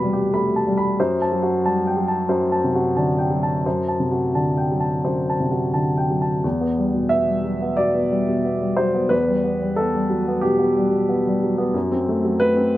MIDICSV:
0, 0, Header, 1, 2, 480
1, 0, Start_track
1, 0, Key_signature, 1, "minor"
1, 0, Tempo, 659341
1, 720, Time_signature, 4, 2, 24, 8
1, 2158, Tempo, 694444
1, 4558, Tempo, 675676
1, 5518, Tempo, 660066
1, 9144, End_track
2, 0, Start_track
2, 0, Title_t, "Upright piano"
2, 0, Program_c, 0, 0
2, 0, Control_c, 0, 64, 127
2, 0, Note_on_c, 0, 40, 47
2, 0, Note_on_c, 0, 47, 42
2, 0, Note_on_c, 0, 48, 33
2, 0, Note_on_c, 0, 55, 35
2, 0, Note_on_c, 0, 67, 38
2, 0, Note_on_c, 0, 71, 52
2, 0, Note_on_c, 0, 81, 36
2, 0, Note_on_c, 0, 83, 47
2, 18, Note_off_c, 0, 55, 0
2, 18, Note_on_c, 0, 55, 42
2, 95, Note_off_c, 0, 67, 0
2, 95, Note_on_c, 0, 67, 47
2, 148, Note_off_c, 0, 47, 0
2, 182, Note_off_c, 0, 83, 0
2, 242, Note_on_c, 0, 57, 38
2, 244, Note_on_c, 0, 83, 47
2, 343, Note_off_c, 0, 67, 0
2, 393, Note_off_c, 0, 55, 0
2, 408, Note_off_c, 0, 81, 0
2, 408, Note_on_c, 0, 81, 41
2, 482, Note_off_c, 0, 57, 0
2, 487, Note_on_c, 0, 55, 45
2, 499, Note_off_c, 0, 83, 0
2, 563, Note_on_c, 0, 83, 50
2, 564, Note_off_c, 0, 81, 0
2, 722, Note_off_c, 0, 83, 0
2, 724, Note_off_c, 0, 55, 0
2, 726, Note_on_c, 0, 72, 55
2, 727, Note_on_c, 0, 42, 59
2, 731, Control_c, 0, 64, 0
2, 733, Note_off_c, 0, 71, 0
2, 735, Note_off_c, 0, 40, 0
2, 736, Note_off_c, 0, 48, 0
2, 850, Control_c, 0, 64, 127
2, 885, Note_on_c, 0, 81, 48
2, 959, Note_on_c, 0, 54, 49
2, 978, Note_off_c, 0, 72, 0
2, 1037, Note_on_c, 0, 66, 48
2, 1137, Note_off_c, 0, 81, 0
2, 1204, Note_on_c, 0, 55, 38
2, 1205, Note_on_c, 0, 81, 50
2, 1292, Note_off_c, 0, 66, 0
2, 1340, Note_off_c, 0, 54, 0
2, 1362, Note_on_c, 0, 79, 41
2, 1433, Note_on_c, 0, 54, 44
2, 1439, Note_off_c, 0, 55, 0
2, 1455, Note_off_c, 0, 81, 0
2, 1516, Note_on_c, 0, 81, 46
2, 1518, Note_off_c, 0, 79, 0
2, 1649, Note_off_c, 0, 42, 0
2, 1667, Note_on_c, 0, 42, 55
2, 1667, Note_on_c, 0, 72, 52
2, 1770, Note_off_c, 0, 81, 0
2, 1816, Note_off_c, 0, 54, 0
2, 1835, Note_on_c, 0, 81, 48
2, 1923, Note_on_c, 0, 48, 43
2, 1927, Note_off_c, 0, 72, 0
2, 2004, Note_on_c, 0, 66, 47
2, 2093, Note_off_c, 0, 81, 0
2, 2158, Note_on_c, 0, 81, 45
2, 2159, Note_on_c, 0, 50, 36
2, 2255, Note_off_c, 0, 66, 0
2, 2302, Note_off_c, 0, 48, 0
2, 2310, Note_on_c, 0, 79, 38
2, 2393, Note_off_c, 0, 50, 0
2, 2393, Note_on_c, 0, 54, 42
2, 2408, Note_off_c, 0, 81, 0
2, 2468, Note_off_c, 0, 79, 0
2, 2480, Note_on_c, 0, 81, 41
2, 2598, Note_off_c, 0, 42, 0
2, 2640, Note_on_c, 0, 42, 46
2, 2640, Note_on_c, 0, 72, 43
2, 2643, Control_c, 0, 64, 0
2, 2729, Note_off_c, 0, 81, 0
2, 2738, Control_c, 0, 64, 127
2, 2773, Note_off_c, 0, 54, 0
2, 2794, Note_on_c, 0, 81, 40
2, 2872, Note_on_c, 0, 48, 35
2, 2889, Note_off_c, 0, 72, 0
2, 2954, Note_on_c, 0, 66, 36
2, 3047, Note_off_c, 0, 81, 0
2, 3113, Note_on_c, 0, 50, 33
2, 3115, Note_on_c, 0, 81, 41
2, 3208, Note_off_c, 0, 66, 0
2, 3256, Note_off_c, 0, 48, 0
2, 3271, Note_on_c, 0, 79, 31
2, 3353, Note_off_c, 0, 50, 0
2, 3368, Note_on_c, 0, 54, 37
2, 3370, Note_off_c, 0, 81, 0
2, 3430, Note_on_c, 0, 81, 39
2, 3432, Note_off_c, 0, 79, 0
2, 3569, Note_off_c, 0, 42, 0
2, 3597, Note_on_c, 0, 42, 39
2, 3597, Note_on_c, 0, 72, 42
2, 3687, Note_off_c, 0, 81, 0
2, 3744, Note_off_c, 0, 54, 0
2, 3769, Note_on_c, 0, 81, 40
2, 3841, Note_on_c, 0, 48, 37
2, 3851, Note_off_c, 0, 72, 0
2, 3918, Note_on_c, 0, 66, 37
2, 4017, Note_off_c, 0, 81, 0
2, 4072, Note_on_c, 0, 50, 29
2, 4074, Note_on_c, 0, 81, 42
2, 4173, Note_off_c, 0, 66, 0
2, 4224, Note_off_c, 0, 48, 0
2, 4239, Note_on_c, 0, 79, 36
2, 4316, Note_off_c, 0, 50, 0
2, 4328, Note_on_c, 0, 54, 35
2, 4333, Note_off_c, 0, 81, 0
2, 4399, Note_off_c, 0, 79, 0
2, 4405, Note_on_c, 0, 81, 39
2, 4532, Note_off_c, 0, 42, 0
2, 4559, Note_on_c, 0, 40, 46
2, 4560, Note_off_c, 0, 81, 0
2, 4562, Note_off_c, 0, 54, 0
2, 4570, Control_c, 0, 64, 0
2, 4680, Note_on_c, 0, 59, 36
2, 4701, Control_c, 0, 64, 127
2, 4799, Note_on_c, 0, 55, 37
2, 4872, Note_off_c, 0, 59, 0
2, 4918, Note_on_c, 0, 47, 33
2, 4992, Note_off_c, 0, 55, 0
2, 5024, Note_on_c, 0, 76, 64
2, 5036, Note_on_c, 0, 59, 34
2, 5111, Note_off_c, 0, 47, 0
2, 5151, Note_on_c, 0, 55, 36
2, 5229, Note_off_c, 0, 59, 0
2, 5273, Note_on_c, 0, 54, 30
2, 5346, Note_off_c, 0, 55, 0
2, 5395, Note_off_c, 0, 54, 0
2, 5399, Note_on_c, 0, 59, 39
2, 5490, Note_off_c, 0, 40, 0
2, 5503, Note_on_c, 0, 74, 70
2, 5510, Note_off_c, 0, 76, 0
2, 5518, Note_on_c, 0, 47, 37
2, 5590, Note_off_c, 0, 59, 0
2, 5629, Note_on_c, 0, 59, 38
2, 5711, Note_off_c, 0, 47, 0
2, 5752, Note_on_c, 0, 55, 40
2, 5827, Note_off_c, 0, 59, 0
2, 5879, Note_on_c, 0, 47, 36
2, 5949, Note_off_c, 0, 55, 0
2, 5999, Note_on_c, 0, 59, 36
2, 6074, Note_off_c, 0, 47, 0
2, 6120, Note_on_c, 0, 55, 37
2, 6195, Note_off_c, 0, 59, 0
2, 6229, Note_on_c, 0, 72, 63
2, 6238, Note_off_c, 0, 74, 0
2, 6244, Note_on_c, 0, 54, 33
2, 6316, Note_off_c, 0, 55, 0
2, 6356, Note_on_c, 0, 59, 40
2, 6366, Note_off_c, 0, 54, 0
2, 6466, Note_on_c, 0, 71, 72
2, 6475, Note_on_c, 0, 40, 48
2, 6480, Note_off_c, 0, 72, 0
2, 6499, Control_c, 0, 64, 0
2, 6555, Note_off_c, 0, 59, 0
2, 6602, Note_on_c, 0, 55, 41
2, 6624, Control_c, 0, 64, 127
2, 6718, Note_on_c, 0, 59, 39
2, 6799, Note_off_c, 0, 55, 0
2, 6849, Note_on_c, 0, 55, 40
2, 6918, Note_off_c, 0, 59, 0
2, 6955, Note_on_c, 0, 69, 62
2, 6961, Note_off_c, 0, 71, 0
2, 6970, Note_on_c, 0, 59, 37
2, 7043, Note_off_c, 0, 55, 0
2, 7083, Note_on_c, 0, 55, 40
2, 7163, Note_off_c, 0, 59, 0
2, 7198, Note_on_c, 0, 54, 35
2, 7278, Note_off_c, 0, 55, 0
2, 7323, Note_off_c, 0, 54, 0
2, 7329, Note_on_c, 0, 59, 44
2, 7412, Note_off_c, 0, 40, 0
2, 7428, Note_on_c, 0, 67, 66
2, 7439, Note_off_c, 0, 69, 0
2, 7439, Note_on_c, 0, 47, 46
2, 7518, Note_off_c, 0, 59, 0
2, 7552, Note_on_c, 0, 59, 45
2, 7632, Note_off_c, 0, 47, 0
2, 7682, Note_on_c, 0, 55, 45
2, 7748, Note_off_c, 0, 59, 0
2, 7783, Note_on_c, 0, 47, 42
2, 7872, Note_off_c, 0, 55, 0
2, 7918, Note_on_c, 0, 59, 43
2, 7982, Note_off_c, 0, 47, 0
2, 8052, Note_on_c, 0, 55, 45
2, 8109, Note_off_c, 0, 59, 0
2, 8168, Note_on_c, 0, 54, 40
2, 8236, Note_off_c, 0, 55, 0
2, 8275, Note_on_c, 0, 59, 49
2, 8282, Note_off_c, 0, 54, 0
2, 8386, Note_off_c, 0, 67, 0
2, 8392, Note_on_c, 0, 42, 56
2, 8395, Note_off_c, 0, 59, 0
2, 8409, Control_c, 0, 64, 0
2, 8506, Control_c, 0, 64, 127
2, 8522, Note_on_c, 0, 60, 48
2, 8643, Note_on_c, 0, 57, 46
2, 8712, Note_off_c, 0, 60, 0
2, 8761, Note_on_c, 0, 54, 48
2, 8833, Note_off_c, 0, 57, 0
2, 8870, Note_on_c, 0, 71, 86
2, 8883, Note_on_c, 0, 57, 44
2, 8952, Note_off_c, 0, 54, 0
2, 8993, Note_on_c, 0, 60, 42
2, 9073, Note_off_c, 0, 57, 0
2, 9144, Note_off_c, 0, 42, 0
2, 9144, Note_off_c, 0, 60, 0
2, 9144, Note_off_c, 0, 71, 0
2, 9144, End_track
0, 0, End_of_file